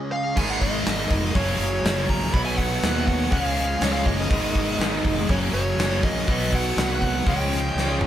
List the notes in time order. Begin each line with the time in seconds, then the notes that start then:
Already playing: C#3 G#3 C#4 G#4 D#5
0.12 F5
0.36 G#1 G#2 D#3 G#3 B3 D#4 A#4 G#5, kick, crash
0.50 F#5
0.61 G#1 D#5, kick, open hi-hat
0.86 G#1, snare, open hi-hat
1.11 F1 D#5, kick, open hi-hat
1.34 F#1 F#2 C#3 F#3 A#3 C#4 G#4 C#5, kick, open hi-hat
1.58 F#1, open hi-hat
1.84 F#1, snare, open hi-hat
2.09 A#1 A#5, kick, open hi-hat
2.31 B1 B2 F#3 B3 D#4 F#4 C#5 B5, kick, open hi-hat
2.46 G#5
2.57 F#5, kick, snare, open hi-hat
2.82 D#2, snare, open hi-hat
3.07 F#5, kick, open hi-hat
3.30 C#2 C#3 F3 G#3 C#4 G#4 D#5 F#5, kick, open hi-hat
3.43 F5
3.57 open hi-hat
3.81 C#2 C#5, snare, open hi-hat
3.93 F5
4.06 F#1 D#5, kick, open hi-hat
4.29 G#1 G#2 D#3 G#3 B3 D#4 A#4, kick, open hi-hat
4.55 G#1, kick, open hi-hat
4.79 G#1, snare, open hi-hat
5.05 F1, kick, open hi-hat
5.28 F#1 F#2 C#3 F#3 A#3 C#4 G#4 C#5, kick, open hi-hat
5.53 F#1 C#5, open hi-hat
5.78 F#1, snare, open hi-hat
6.03 A#1 D#5, kick, open hi-hat
6.27 B1 B2 F#3 B3 D#4 F#4 C#5, kick, open hi-hat
6.52 F#5, kick, open hi-hat
6.77 C2, snare, open hi-hat
7.02 F#5, kick, open hi-hat
7.25 C#2 C#3 F3 G#3 C#4 G#4 D#5, kick, open hi-hat
7.30 G5
7.52 open hi-hat
7.75 C#2, snare
8.01 G1, mid tom